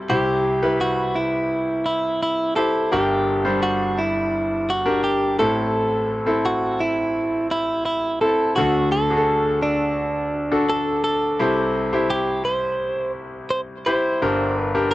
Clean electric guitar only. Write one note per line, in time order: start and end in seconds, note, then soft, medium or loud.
0.10 0.80 G4 medium
0.81 1.17 F#4 medium
1.15 1.85 E4 medium
1.86 2.21 E4 medium
2.23 2.56 E4 medium
2.56 2.92 A4 medium
2.93 3.62 G4 loud
3.63 3.99 F#4 loud
3.98 4.71 E4 medium
4.70 5.03 F#4 loud
5.04 5.37 G4 medium
5.39 6.45 A4 medium
6.46 6.82 F#4 medium
6.81 7.47 E4 loud
7.51 7.84 E4 medium
7.86 8.21 E4 medium
8.21 8.56 A4 medium
8.56 8.89 F#4 loud
8.92 9.59 A4 loud
9.63 10.64 D4 medium
10.69 11.03 A4 loud
11.04 12.10 A4 loud
12.10 12.45 G4 loud
12.45 13.12 C5 medium
13.50 13.60 C5 medium
13.86 14.59 C5 medium
14.59 14.91 B4 medium
14.91 14.94 A#4 loud